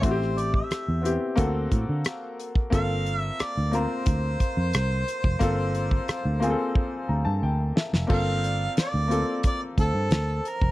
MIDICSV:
0, 0, Header, 1, 7, 480
1, 0, Start_track
1, 0, Tempo, 671892
1, 21, Time_signature, 4, 2, 24, 8
1, 7655, End_track
2, 0, Start_track
2, 0, Title_t, "Harmonica"
2, 0, Program_c, 0, 22
2, 25, Note_on_c, 0, 72, 82
2, 271, Note_on_c, 0, 74, 79
2, 282, Note_off_c, 0, 72, 0
2, 387, Note_off_c, 0, 74, 0
2, 394, Note_on_c, 0, 76, 63
2, 840, Note_off_c, 0, 76, 0
2, 1952, Note_on_c, 0, 77, 112
2, 2266, Note_off_c, 0, 77, 0
2, 2266, Note_on_c, 0, 76, 112
2, 2439, Note_on_c, 0, 74, 96
2, 2450, Note_off_c, 0, 76, 0
2, 2683, Note_on_c, 0, 72, 95
2, 2693, Note_off_c, 0, 74, 0
2, 5313, Note_off_c, 0, 72, 0
2, 5814, Note_on_c, 0, 77, 108
2, 6250, Note_off_c, 0, 77, 0
2, 6287, Note_on_c, 0, 74, 99
2, 6726, Note_off_c, 0, 74, 0
2, 6762, Note_on_c, 0, 74, 95
2, 6866, Note_off_c, 0, 74, 0
2, 6999, Note_on_c, 0, 69, 103
2, 7490, Note_on_c, 0, 70, 84
2, 7500, Note_off_c, 0, 69, 0
2, 7655, Note_off_c, 0, 70, 0
2, 7655, End_track
3, 0, Start_track
3, 0, Title_t, "Vibraphone"
3, 0, Program_c, 1, 11
3, 6033, Note_on_c, 1, 74, 50
3, 6726, Note_off_c, 1, 74, 0
3, 6985, Note_on_c, 1, 72, 64
3, 7655, Note_off_c, 1, 72, 0
3, 7655, End_track
4, 0, Start_track
4, 0, Title_t, "Grand piano"
4, 0, Program_c, 2, 0
4, 0, Control_c, 2, 64, 127
4, 6, Note_on_c, 2, 57, 73
4, 16, Note_on_c, 2, 60, 72
4, 24, Note_on_c, 2, 64, 72
4, 29, Control_c, 2, 64, 0
4, 34, Note_on_c, 2, 66, 75
4, 74, Note_off_c, 2, 66, 0
4, 78, Note_on_c, 2, 67, 98
4, 157, Control_c, 2, 64, 127
4, 594, Note_off_c, 2, 57, 0
4, 599, Note_off_c, 2, 60, 0
4, 603, Note_off_c, 2, 64, 0
4, 630, Note_off_c, 2, 67, 0
4, 726, Note_on_c, 2, 59, 69
4, 737, Note_on_c, 2, 60, 65
4, 746, Note_on_c, 2, 64, 58
4, 755, Note_on_c, 2, 67, 77
4, 965, Note_off_c, 2, 60, 0
4, 969, Note_on_c, 2, 58, 103
4, 975, Note_off_c, 2, 59, 0
4, 976, Note_on_c, 2, 60, 82
4, 985, Note_off_c, 2, 64, 0
4, 985, Note_on_c, 2, 66, 94
4, 989, Note_off_c, 2, 67, 0
4, 992, Control_c, 2, 64, 0
4, 994, Note_on_c, 2, 69, 99
4, 1133, Control_c, 2, 64, 127
4, 1749, Note_off_c, 2, 58, 0
4, 1753, Note_off_c, 2, 60, 0
4, 1757, Note_off_c, 2, 66, 0
4, 1762, Note_off_c, 2, 69, 0
4, 1930, Note_on_c, 2, 58, 81
4, 1937, Note_on_c, 2, 60, 66
4, 1946, Note_on_c, 2, 65, 73
4, 1952, Control_c, 2, 64, 0
4, 1953, Note_on_c, 2, 69, 89
4, 2060, Control_c, 2, 64, 127
4, 2517, Note_off_c, 2, 58, 0
4, 2520, Note_off_c, 2, 60, 0
4, 2525, Note_off_c, 2, 65, 0
4, 2528, Note_off_c, 2, 69, 0
4, 2654, Note_on_c, 2, 58, 72
4, 2660, Note_on_c, 2, 60, 63
4, 2667, Note_on_c, 2, 65, 61
4, 2677, Note_on_c, 2, 70, 80
4, 3432, Note_off_c, 2, 58, 0
4, 3435, Note_off_c, 2, 60, 0
4, 3439, Note_off_c, 2, 65, 0
4, 3443, Note_off_c, 2, 70, 0
4, 3853, Note_on_c, 2, 58, 98
4, 3860, Note_on_c, 2, 60, 81
4, 3868, Note_on_c, 2, 65, 89
4, 3875, Note_on_c, 2, 69, 104
4, 4438, Note_off_c, 2, 58, 0
4, 4442, Note_off_c, 2, 60, 0
4, 4446, Note_off_c, 2, 65, 0
4, 4450, Note_off_c, 2, 69, 0
4, 4571, Note_on_c, 2, 58, 81
4, 4582, Note_on_c, 2, 60, 79
4, 4587, Note_on_c, 2, 65, 72
4, 4597, Note_on_c, 2, 68, 74
4, 4637, Note_off_c, 2, 68, 0
4, 4645, Note_on_c, 2, 69, 87
4, 5064, Note_on_c, 2, 82, 53
4, 5176, Note_off_c, 2, 82, 0
4, 5178, Note_on_c, 2, 81, 70
4, 5292, Note_off_c, 2, 81, 0
4, 5309, Note_on_c, 2, 79, 59
4, 5351, Note_off_c, 2, 58, 0
4, 5356, Note_off_c, 2, 60, 0
4, 5358, Note_off_c, 2, 65, 0
4, 5388, Note_off_c, 2, 69, 0
4, 5530, Note_off_c, 2, 79, 0
4, 5543, Note_on_c, 2, 76, 54
4, 5765, Note_on_c, 2, 58, 77
4, 5767, Note_off_c, 2, 76, 0
4, 5773, Note_on_c, 2, 60, 69
4, 5781, Note_on_c, 2, 65, 79
4, 5791, Note_on_c, 2, 69, 89
4, 5793, Control_c, 2, 64, 0
4, 5906, Control_c, 2, 64, 127
4, 6354, Note_off_c, 2, 58, 0
4, 6358, Note_off_c, 2, 60, 0
4, 6362, Note_off_c, 2, 65, 0
4, 6367, Note_off_c, 2, 69, 0
4, 6486, Note_on_c, 2, 58, 71
4, 6495, Note_on_c, 2, 60, 64
4, 6503, Note_on_c, 2, 65, 63
4, 6512, Note_on_c, 2, 69, 79
4, 7267, Note_off_c, 2, 58, 0
4, 7272, Note_off_c, 2, 60, 0
4, 7276, Note_off_c, 2, 65, 0
4, 7281, Note_off_c, 2, 69, 0
4, 7655, End_track
5, 0, Start_track
5, 0, Title_t, "Fingered electric bass"
5, 0, Program_c, 3, 33
5, 28, Note_on_c, 3, 33, 92
5, 435, Note_off_c, 3, 33, 0
5, 632, Note_on_c, 3, 40, 68
5, 832, Note_off_c, 3, 40, 0
5, 987, Note_on_c, 3, 38, 93
5, 1190, Note_off_c, 3, 38, 0
5, 1229, Note_on_c, 3, 45, 87
5, 1329, Note_off_c, 3, 45, 0
5, 1351, Note_on_c, 3, 50, 81
5, 1450, Note_off_c, 3, 50, 0
5, 1948, Note_on_c, 3, 31, 95
5, 2355, Note_off_c, 3, 31, 0
5, 2554, Note_on_c, 3, 38, 68
5, 2754, Note_off_c, 3, 38, 0
5, 2907, Note_on_c, 3, 38, 80
5, 3110, Note_off_c, 3, 38, 0
5, 3266, Note_on_c, 3, 41, 81
5, 3367, Note_off_c, 3, 41, 0
5, 3391, Note_on_c, 3, 36, 85
5, 3592, Note_off_c, 3, 36, 0
5, 3747, Note_on_c, 3, 29, 86
5, 3848, Note_off_c, 3, 29, 0
5, 3865, Note_on_c, 3, 31, 94
5, 4273, Note_off_c, 3, 31, 0
5, 4468, Note_on_c, 3, 38, 78
5, 4671, Note_off_c, 3, 38, 0
5, 5066, Note_on_c, 3, 38, 78
5, 5168, Note_off_c, 3, 38, 0
5, 5185, Note_on_c, 3, 43, 79
5, 5287, Note_off_c, 3, 43, 0
5, 5305, Note_on_c, 3, 38, 83
5, 5509, Note_off_c, 3, 38, 0
5, 5666, Note_on_c, 3, 29, 68
5, 5768, Note_off_c, 3, 29, 0
5, 5787, Note_on_c, 3, 31, 90
5, 6194, Note_off_c, 3, 31, 0
5, 6386, Note_on_c, 3, 38, 76
5, 6589, Note_off_c, 3, 38, 0
5, 6986, Note_on_c, 3, 38, 86
5, 7087, Note_off_c, 3, 38, 0
5, 7101, Note_on_c, 3, 43, 69
5, 7204, Note_off_c, 3, 43, 0
5, 7221, Note_on_c, 3, 38, 86
5, 7426, Note_off_c, 3, 38, 0
5, 7586, Note_on_c, 3, 29, 78
5, 7655, Note_off_c, 3, 29, 0
5, 7655, End_track
6, 0, Start_track
6, 0, Title_t, "Muted fingered electric bass strokes"
6, 509, Note_on_c, 9, 29, 38
6, 580, Note_off_c, 9, 29, 0
6, 2434, Note_on_c, 9, 29, 41
6, 2505, Note_off_c, 9, 29, 0
6, 4351, Note_on_c, 9, 29, 46
6, 4422, Note_off_c, 9, 29, 0
6, 6268, Note_on_c, 9, 29, 41
6, 6339, Note_off_c, 9, 29, 0
6, 7655, End_track
7, 0, Start_track
7, 0, Title_t, "Drums"
7, 22, Note_on_c, 9, 42, 90
7, 24, Note_on_c, 9, 36, 103
7, 93, Note_off_c, 9, 42, 0
7, 96, Note_off_c, 9, 36, 0
7, 160, Note_on_c, 9, 37, 30
7, 231, Note_off_c, 9, 37, 0
7, 271, Note_on_c, 9, 42, 61
7, 342, Note_off_c, 9, 42, 0
7, 384, Note_on_c, 9, 36, 83
7, 456, Note_off_c, 9, 36, 0
7, 505, Note_on_c, 9, 42, 74
7, 513, Note_on_c, 9, 37, 79
7, 577, Note_off_c, 9, 42, 0
7, 584, Note_off_c, 9, 37, 0
7, 752, Note_on_c, 9, 42, 64
7, 823, Note_off_c, 9, 42, 0
7, 982, Note_on_c, 9, 42, 83
7, 986, Note_on_c, 9, 36, 82
7, 1053, Note_off_c, 9, 42, 0
7, 1058, Note_off_c, 9, 36, 0
7, 1225, Note_on_c, 9, 42, 58
7, 1226, Note_on_c, 9, 36, 74
7, 1297, Note_off_c, 9, 36, 0
7, 1297, Note_off_c, 9, 42, 0
7, 1462, Note_on_c, 9, 42, 81
7, 1472, Note_on_c, 9, 37, 122
7, 1533, Note_off_c, 9, 42, 0
7, 1543, Note_off_c, 9, 37, 0
7, 1711, Note_on_c, 9, 42, 59
7, 1783, Note_off_c, 9, 42, 0
7, 1825, Note_on_c, 9, 36, 87
7, 1896, Note_off_c, 9, 36, 0
7, 1947, Note_on_c, 9, 36, 104
7, 1947, Note_on_c, 9, 42, 89
7, 2018, Note_off_c, 9, 36, 0
7, 2019, Note_off_c, 9, 42, 0
7, 2189, Note_on_c, 9, 42, 60
7, 2260, Note_off_c, 9, 42, 0
7, 2424, Note_on_c, 9, 42, 68
7, 2431, Note_on_c, 9, 37, 81
7, 2495, Note_off_c, 9, 42, 0
7, 2503, Note_off_c, 9, 37, 0
7, 2665, Note_on_c, 9, 42, 66
7, 2737, Note_off_c, 9, 42, 0
7, 2900, Note_on_c, 9, 42, 79
7, 2905, Note_on_c, 9, 36, 91
7, 2971, Note_off_c, 9, 42, 0
7, 2976, Note_off_c, 9, 36, 0
7, 3144, Note_on_c, 9, 42, 58
7, 3145, Note_on_c, 9, 36, 78
7, 3215, Note_off_c, 9, 42, 0
7, 3216, Note_off_c, 9, 36, 0
7, 3382, Note_on_c, 9, 42, 83
7, 3392, Note_on_c, 9, 37, 115
7, 3453, Note_off_c, 9, 42, 0
7, 3463, Note_off_c, 9, 37, 0
7, 3629, Note_on_c, 9, 42, 63
7, 3701, Note_off_c, 9, 42, 0
7, 3744, Note_on_c, 9, 36, 94
7, 3815, Note_off_c, 9, 36, 0
7, 3861, Note_on_c, 9, 42, 86
7, 3864, Note_on_c, 9, 36, 95
7, 3933, Note_off_c, 9, 42, 0
7, 3936, Note_off_c, 9, 36, 0
7, 4105, Note_on_c, 9, 42, 64
7, 4176, Note_off_c, 9, 42, 0
7, 4224, Note_on_c, 9, 36, 83
7, 4296, Note_off_c, 9, 36, 0
7, 4345, Note_on_c, 9, 42, 68
7, 4352, Note_on_c, 9, 37, 87
7, 4416, Note_off_c, 9, 42, 0
7, 4423, Note_off_c, 9, 37, 0
7, 4590, Note_on_c, 9, 42, 56
7, 4661, Note_off_c, 9, 42, 0
7, 4825, Note_on_c, 9, 36, 90
7, 4897, Note_off_c, 9, 36, 0
7, 5551, Note_on_c, 9, 38, 86
7, 5622, Note_off_c, 9, 38, 0
7, 5670, Note_on_c, 9, 38, 78
7, 5741, Note_off_c, 9, 38, 0
7, 5785, Note_on_c, 9, 49, 82
7, 5786, Note_on_c, 9, 36, 92
7, 5856, Note_off_c, 9, 49, 0
7, 5858, Note_off_c, 9, 36, 0
7, 6030, Note_on_c, 9, 42, 62
7, 6101, Note_off_c, 9, 42, 0
7, 6265, Note_on_c, 9, 42, 69
7, 6272, Note_on_c, 9, 38, 76
7, 6336, Note_off_c, 9, 42, 0
7, 6343, Note_off_c, 9, 38, 0
7, 6509, Note_on_c, 9, 42, 63
7, 6580, Note_off_c, 9, 42, 0
7, 6739, Note_on_c, 9, 42, 81
7, 6744, Note_on_c, 9, 36, 86
7, 6810, Note_off_c, 9, 42, 0
7, 6816, Note_off_c, 9, 36, 0
7, 6984, Note_on_c, 9, 36, 71
7, 6985, Note_on_c, 9, 42, 57
7, 7056, Note_off_c, 9, 36, 0
7, 7057, Note_off_c, 9, 42, 0
7, 7220, Note_on_c, 9, 42, 77
7, 7230, Note_on_c, 9, 38, 123
7, 7292, Note_off_c, 9, 42, 0
7, 7302, Note_off_c, 9, 38, 0
7, 7468, Note_on_c, 9, 42, 68
7, 7539, Note_off_c, 9, 42, 0
7, 7583, Note_on_c, 9, 36, 89
7, 7655, Note_off_c, 9, 36, 0
7, 7655, End_track
0, 0, End_of_file